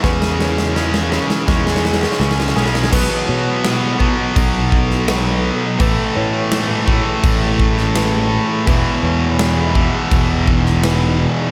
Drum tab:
CC |--------------------------------|x-------x-------x-------x-------|x-------x-------x-------x-------|x-------x-------x-------x-------|
SD |o-o-o-o-o-o-o-o-o-oooooooooooooo|--------o-------------o-o-------|--------o-------------o-o-------|--------o-------------o-o-------|
BD |o---------------o---------------|o-----------o---o---o-----------|o-----------o---o---o-----------|o-----------o---o---o-----------|